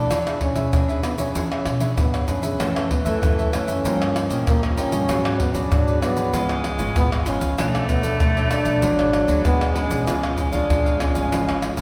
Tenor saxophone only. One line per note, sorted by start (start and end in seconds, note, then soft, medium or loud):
2.60 3.81 E3 medium
3.85 5.05 F3 medium
5.09 5.67 F#3 loud
5.71 6.35 F#3 medium
6.33 7.31 G#3 loud
7.58 8.84 A3 loud
8.83 9.47 F#3 loud
9.45 10.07 G#3 loud
10.08 11.81 G#3 medium